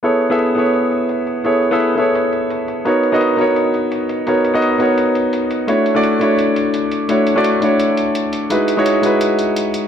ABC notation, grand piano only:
X:1
M:4/4
L:1/16
Q:"Swing 16ths" 1/4=170
K:Alyd
V:1 name="Grand piano"
[B,EGAc]3 [B,EGAe]3 [B,EGAc]8- [B,EGAc]2 | [B,EGAc]3 [B,EGAe]3 [B,EGAc]8- [B,EGAc]2 | [B,DF^Ac]3 [B,DFAd]3 [B,DFAc]8- [B,DFAc]2 | [B,DF^Ac]3 [B,DFAd]3 [B,DFAc]8- [B,DFAc]2 |
[A,=DEFc]3 [A,DEF=d]3 [A,DEFc]8- [A,DEFc]2 | [A,=DEFc]3 [A,DEF=d]3 [A,DEFc]8- [A,DEFc]2 | [G,DEFB]3 [G,DEFc]3 [G,DEFB]8- [G,DEFB]2 |]